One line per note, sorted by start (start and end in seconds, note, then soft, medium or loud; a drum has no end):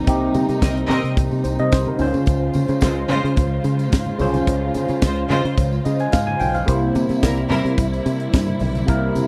0.00 1.95 C3 medium
0.00 1.96 G3 medium
0.00 1.96 A#3 medium
0.00 1.96 D#4 medium
0.06 0.28 C2 loud
0.06 1.96 C3 medium
0.06 1.96 C4 medium
0.06 1.96 D#4 medium
0.06 1.97 G4 medium
0.06 kick loud
0.06 closed hi-hat medium
0.06 tambourine medium
0.34 0.46 C3 loud
0.34 closed hi-hat medium
0.34 tambourine medium
0.34 muted conga soft
0.34 high conga medium
0.49 0.59 C3 loud
0.49 closed hi-hat soft
0.49 tambourine soft
0.61 0.83 C2 loud
0.61 0.74 C4 medium
0.61 0.74 A#4 medium
0.61 0.74 D#5 medium
0.61 kick loud
0.61 snare loud
0.61 closed hi-hat loud
0.61 tambourine loud
0.61 high conga medium
0.77 closed hi-hat soft
0.88 1.01 C3 loud
0.88 1.13 C4 medium
0.88 1.13 A#4 medium
0.88 1.13 D#5 loud
0.88 closed hi-hat medium
0.88 tambourine medium
0.88 muted conga soft
0.88 low conga medium
1.04 1.14 C3 loud
1.04 closed hi-hat soft
1.17 1.28 C2 loud
1.17 kick loud
1.17 closed hi-hat medium
1.17 tambourine medium
1.17 muted conga soft
1.17 low conga medium
1.31 1.42 C3 medium
1.31 tambourine soft
1.44 1.56 C2 loud
1.44 1.58 C5 medium
1.44 closed hi-hat medium
1.44 tambourine medium
1.59 1.69 C3 loud
1.59 1.72 D#5 medium
1.59 closed hi-hat soft
1.72 1.84 C2 loud
1.72 1.86 C5 medium
1.72 kick loud
1.72 snare loud
1.72 closed hi-hat medium
1.72 tambourine medium
1.72 muted conga soft
1.86 1.97 C3 medium
1.86 2.13 A#4 medium
1.86 high conga medium
1.98 2.11 C#2 loud
1.98 4.15 C#3 medium
1.98 6.64 C#3 medium
1.98 6.64 G#3 medium
1.98 4.16 C#4 medium
1.98 2.07 D#4 medium
1.98 6.64 F4 medium
1.98 6.64 C5 medium
1.98 4.17 C5 medium
1.98 open hi-hat medium
1.98 tambourine soft
1.98 muted conga soft
1.98 high conga medium
1.98 low conga medium
2.07 4.19 F4 medium
2.14 2.24 C#3 medium
2.14 closed hi-hat medium
2.14 tambourine soft
2.14 high conga medium
2.26 2.48 C#2 loud
2.26 kick loud
2.26 closed hi-hat medium
2.26 tambourine medium
2.26 muted conga soft
2.53 2.66 C#3 medium
2.53 closed hi-hat medium
2.53 tambourine medium
2.53 high conga medium
2.68 2.84 C#3 loud
2.68 closed hi-hat soft
2.68 tambourine soft
2.81 3.03 C#2 loud
2.81 2.95 G#3 medium
2.81 2.95 F4 medium
2.81 2.94 C5 medium
2.81 kick loud
2.81 snare loud
2.81 closed hi-hat loud
2.81 tambourine loud
2.81 muted conga soft
2.81 high conga medium
3.08 3.21 C#3 loud
3.08 3.33 G#3 medium
3.08 3.33 F4 medium
3.08 3.33 C5 loud
3.08 closed hi-hat medium
3.08 tambourine medium
3.08 muted conga soft
3.08 low conga medium
3.24 3.34 C#3 loud
3.24 closed hi-hat soft
3.36 3.58 C#2 loud
3.36 kick loud
3.36 closed hi-hat medium
3.36 tambourine medium
3.36 low conga medium
3.64 3.93 C#3 loud
3.64 closed hi-hat medium
3.64 tambourine medium
3.64 muted conga soft
3.79 closed hi-hat soft
3.79 tambourine soft
3.92 4.14 G#2 medium
3.92 kick loud
3.92 snare loud
3.92 closed hi-hat medium
3.92 tambourine medium
4.06 high conga medium
4.19 4.41 C2 loud
4.19 6.36 C#3 medium
4.19 6.36 C#4 medium
4.19 6.37 F4 medium
4.19 6.37 C5 medium
4.19 open hi-hat medium
4.19 tambourine medium
4.19 high conga medium
4.19 low conga medium
4.34 closed hi-hat medium
4.34 tambourine soft
4.34 high conga medium
4.47 4.69 C#2 loud
4.47 kick loud
4.47 closed hi-hat medium
4.47 tambourine medium
4.47 muted conga soft
4.74 4.86 C#3 loud
4.74 closed hi-hat medium
4.74 tambourine medium
4.74 muted conga soft
4.74 high conga medium
4.88 4.99 C#3 loud
4.88 closed hi-hat soft
4.88 tambourine soft
5.02 5.24 C#2 loud
5.02 5.15 G#3 medium
5.02 5.15 F4 medium
5.02 5.16 C5 medium
5.02 kick loud
5.02 snare loud
5.02 closed hi-hat loud
5.02 tambourine loud
5.02 muted conga soft
5.02 high conga medium
5.30 5.41 C#3 loud
5.30 5.54 G#3 medium
5.30 5.54 F4 loud
5.30 5.54 C5 loud
5.30 closed hi-hat medium
5.30 tambourine medium
5.30 muted conga soft
5.30 low conga medium
5.45 5.55 C#3 loud
5.45 closed hi-hat soft
5.57 5.79 C#2 loud
5.57 kick loud
5.57 closed hi-hat medium
5.57 tambourine medium
5.57 muted conga soft
5.57 low conga medium
5.72 tambourine soft
5.85 6.07 C#3 medium
5.85 5.99 D#5 medium
5.85 closed hi-hat medium
5.85 tambourine medium
5.99 6.12 G#5 medium
5.99 closed hi-hat soft
5.99 tambourine soft
6.12 6.34 G#2 medium
6.12 6.27 F5 medium
6.12 kick loud
6.12 snare loud
6.12 closed hi-hat medium
6.12 tambourine medium
6.27 6.39 G#5 medium
6.27 high conga medium
6.40 6.62 B1 loud
6.40 6.54 G5 medium
6.40 open hi-hat medium
6.40 tambourine medium
6.40 muted conga soft
6.40 high conga medium
6.40 low conga medium
6.55 6.81 F5 medium
6.55 closed hi-hat medium
6.55 tambourine soft
6.55 high conga medium
6.66 6.89 C2 medium
6.66 8.83 C3 medium
6.66 9.27 C3 medium
6.66 9.27 G3 medium
6.66 8.83 A#3 medium
6.66 8.86 A#3 medium
6.66 8.84 E4 medium
6.66 9.27 E4 medium
6.66 8.84 C5 medium
6.66 kick loud
6.66 closed hi-hat loud
6.66 tambourine medium
6.66 muted conga soft
6.95 7.07 C3 loud
6.95 closed hi-hat medium
6.95 tambourine medium
6.95 high conga medium
7.09 7.20 C3 loud
7.09 closed hi-hat soft
7.09 tambourine soft
7.23 7.44 C2 loud
7.23 7.35 G3 medium
7.23 7.35 E4 medium
7.23 7.35 A#4 medium
7.23 kick loud
7.23 snare loud
7.23 closed hi-hat loud
7.23 tambourine loud
7.23 high conga medium
7.50 7.62 C3 loud
7.50 7.74 G3 medium
7.50 7.74 E4 loud
7.50 7.74 A#4 loud
7.50 closed hi-hat medium
7.50 tambourine medium
7.50 muted conga soft
7.50 low conga medium
7.65 7.75 C3 loud
7.65 closed hi-hat soft
7.78 7.99 C2 loud
7.78 kick loud
7.78 closed hi-hat medium
7.78 tambourine medium
7.78 muted conga soft
7.78 low conga medium
7.93 closed hi-hat soft
7.93 tambourine soft
8.06 8.27 C3 loud
8.06 closed hi-hat medium
8.06 tambourine medium
8.06 muted conga soft
8.20 closed hi-hat soft
8.32 8.55 G2 medium
8.32 kick loud
8.32 snare loud
8.32 closed hi-hat medium
8.32 tambourine loud
8.32 muted conga soft
8.47 closed hi-hat soft
8.47 high conga medium
8.59 8.82 B1 loud
8.59 open hi-hat medium
8.59 tambourine soft
8.59 muted conga soft
8.59 high conga medium
8.59 low conga medium
8.75 closed hi-hat medium
8.75 tambourine soft
8.75 high conga medium
8.86 9.09 C2 loud
8.86 9.27 C3 medium
8.86 9.27 A#3 medium
8.86 9.27 C4 medium
8.86 9.27 E4 medium
8.86 9.27 A#4 medium
8.86 kick loud
8.86 closed hi-hat medium
8.86 tambourine medium
9.15 9.27 C3 loud
9.15 closed hi-hat medium
9.15 tambourine medium
9.15 muted conga soft
9.15 high conga medium